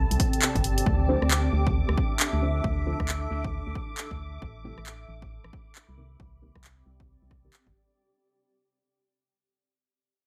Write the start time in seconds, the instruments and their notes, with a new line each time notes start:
Already playing: ambient pad C4 G4 D5, string machine A5
0.11 fm bass C2, closed hi-hat
0.20 kick, open hi-hat
0.33 closed hi-hat
0.42 clap
0.55 fm bass G1, kick, closed hi-hat
0.64 open hi-hat
0.78 closed hi-hat
0.86 fm bass D2, ambient pad D4, string machine D6, kick
1.06 synth stab D4 F4 A4 C5, ambient pad A4
1.10 ambient pad E5
1.22 fm bass D2, cross-stick
1.31 clap
1.53 fm bass D2
1.67 kick
1.89 fm bass D2, cross-stick
1.98 kick
2.20 clap
2.33 fm bass D2
2.42 synth stab D4 F4 A4 C5
2.64 fm bass D2, kick
2.86 synth stab D4 F4 A4 C5
3.00 fm bass D2, kick, cross-stick
3.09 clap
3.31 fm bass D2
3.44 kick
3.67 fm bass D2
3.75 kick
3.98 clap
4.11 fm bass D2, kick
4.42 fm bass A1, kick
4.64 synth stab A3 C4 E4 G4
4.78 fm bass A1, cross-stick
4.86 clap
5.09 fm bass A1
5.22 kick
5.44 fm bass A1, cross-stick
5.53 kick
5.75 clap
5.89 fm bass C2
5.98 synth stab C4 D#4 G4 A#4, ambient pad C4
6.20 fm bass C2, kick
6.36 ambient pad D5
6.42 synth stab C4 D#4 G4 A#4
6.56 fm bass C2, kick, cross-stick
6.64 clap
6.86 fm bass C2
7.00 kick
7.22 fm bass C2
7.31 kick, cross-stick
7.44 synth stab C4 D#4 G4 A#4
7.53 clap
7.67 fm bass G1, kick